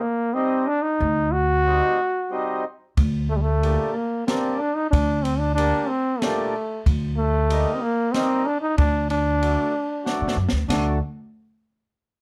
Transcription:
0.01 A#3
0.34 G3 C4 D#4
0.67 D4
0.82 D#4
1.00 D2
1.32 F#4
1.65 G3 C4 D#4
2.30 G3 C4 D#4
2.97 D2, kick, ride
3.30 A3
3.36 G3
3.42 A3
3.62 A#2 G3 D4, ride
3.94 A#3
4.27 G3 A#3 C4 D4, snare, ride
4.59 D4
4.76 D#4
4.91 D2 D4, kick, ride
5.23 C4, ride
5.39 D4
5.55 G3 A#3 D4, ride
5.88 C4
6.20 A#2 G3 A3 D4, snare, ride
6.86 D2, kick, ride
7.17 A3
7.50 G3 A#3 D#4, ride
7.74 C4
7.81 A#3
8.12 G3 A#3 C4 D#4, snare, ride
8.46 D4
8.61 D#4
8.78 D2 D4, kick, ride
9.10 D4, ride
9.41 F#3 A3 D4, ride
10.04 F#3 A3 D4, snare
10.21 A2
10.28 snare
10.36 F#2
10.49 D2, snare
10.69 D2 F#3 A3 D4, snare, ride bell

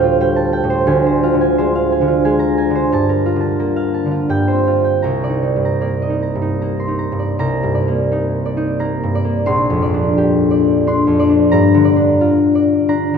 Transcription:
Already playing: D2 G3 A4 C5 F5 G5
0.00 A2 F4
0.21 G3 G5
0.36 A5
0.53 G5
0.64 A2
0.70 C5
0.87 D2 G#5
1.06 C5
1.23 F4
1.34 D3
1.41 G#5
1.58 G#3 C5
1.75 F5
1.92 G#5
2.01 D3
2.08 F4
2.25 G#3 G#5
2.39 A#5
2.58 G#5
2.70 D3
2.75 C5
2.92 G2 A5
3.09 A#4
3.26 F4
3.36 D3
3.40 A5
3.59 A#3 A#4
3.76 F5
3.94 A5
4.06 D3
4.11 F4
4.29 G2 G5
4.48 C5
4.53 C4
4.67 F4
4.84 G5
5.02 C2 A#5
5.24 D5
5.30 D#4
5.42 D#4
5.56 G2
5.65 A#5
5.81 A#3 D5
6.02 D#5
6.10 D#4
6.22 A#5
6.35 G2
6.42 D#4
6.61 A#3 A#5
6.80 C6
6.88 D#4
6.99 A#5
7.12 G2
7.19 D5
7.39 C2 A#5
7.63 G2
7.74 D5
7.88 A#3
8.12 D#4
8.46 D5
8.57 D#4
8.80 A#3 A#5
9.03 G2
9.15 D5
9.25 A#3
9.46 A#1 C6
9.70 F2
9.82 D5
9.94 D4
10.18 G4
10.51 D5
10.87 D4 C6
11.07 F2
11.20 D5
11.30 D4
11.52 G2 A#5
11.74 D3
11.85 D5
11.96 D4
12.21 F4
12.55 D5
12.89 D4 A#5
13.14 D3

